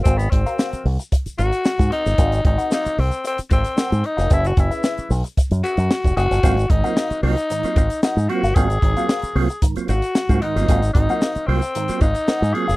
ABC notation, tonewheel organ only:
X:1
M:4/4
L:1/16
Q:1/4=113
K:Abmix
V:1 name="Tonewheel organ"
z16 | z16 | z16 | [G,B,CF] z [A,,E,] [G,B,CF] z2 [G,B,CF] z [A,,E,] [G,B,CF] [CF] z3 [G,B,CF] z |
[G,B,CF] z [A,,E,] [G,B,CF] z2 [G,B,CF] z [A,,E,] [G,B,CF] [CF] z2 [G,B,CF] [A,,E,] [G,B,CF] | [G,B,CF] z [A,,E,] [G,B,CF] z2 [G,B,CF] z [A,,E,] [G,B,CF] [CF] z3 [G,B,CF] z |]